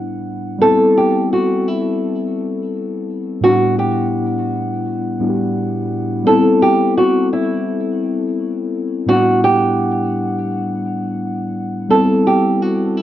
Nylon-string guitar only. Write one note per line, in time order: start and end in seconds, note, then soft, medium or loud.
0.62 0.93 A4 medium
0.97 1.28 G4 medium
1.33 1.68 F#4 medium
1.68 2.92 E4 medium
3.44 3.75 F#4 loud
3.79 5.51 G4 medium
6.27 6.58 A4 loud
6.62 6.93 G4 medium
6.98 7.28 F#4 medium
7.33 8.57 E4 medium
9.09 9.40 F#4 medium
9.44 11.16 G4 medium
11.90 12.22 A4 medium
12.27 12.62 G4 medium
12.62 12.97 F#4 medium
12.97 13.02 E4 medium